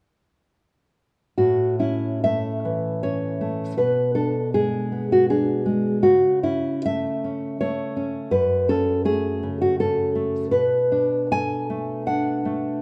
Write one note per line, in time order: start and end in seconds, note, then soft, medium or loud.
1.38 3.74 A2 soft
1.38 1.79 F#4 medium
1.79 3.02 C#4 soft
1.79 2.22 E4 soft
2.24 3.40 A3 soft
2.24 2.99 E5 medium
2.65 3.78 E3 soft
3.03 3.78 C#4 soft
3.03 3.75 C#5 medium
3.41 3.78 A3 soft
3.78 6.00 B2 soft
3.78 4.14 B4 medium
4.15 5.30 D4 soft
4.15 4.52 A4 medium
4.54 5.64 G#3 soft
4.54 5.09 G#4 medium
4.92 6.04 B3 soft
5.12 5.30 F#4 medium
5.30 6.04 D4 soft
5.30 6.01 G#4 medium
5.66 6.03 G#3 soft
6.03 8.28 C#3 soft
6.03 6.42 F#4 medium
6.43 7.23 C#4 soft
6.43 6.84 E4 soft
6.86 7.60 A3 soft
6.86 7.57 E5 medium
7.24 7.95 C#4 soft
7.61 8.33 A3 soft
7.61 8.30 C#5 medium
7.97 8.33 C#4 soft
8.31 10.47 F#2 soft
8.31 8.67 B4 medium
8.69 9.78 C#4 soft
8.69 9.04 A4 medium
9.05 10.14 A3 soft
9.05 9.57 G#4 medium
9.43 10.52 C#3 soft
9.61 9.79 F#4 medium
9.80 10.53 C#4 soft
9.80 10.50 A4 medium
10.15 10.52 A3 soft
10.51 12.81 B2 soft
10.51 11.29 B4 medium
10.92 12.05 D4 soft
11.31 12.46 A4 soft
11.31 12.05 G#5 medium
11.70 12.44 A3 soft
12.07 12.82 D4 soft
12.07 12.81 F#5 medium
12.45 12.82 A3 soft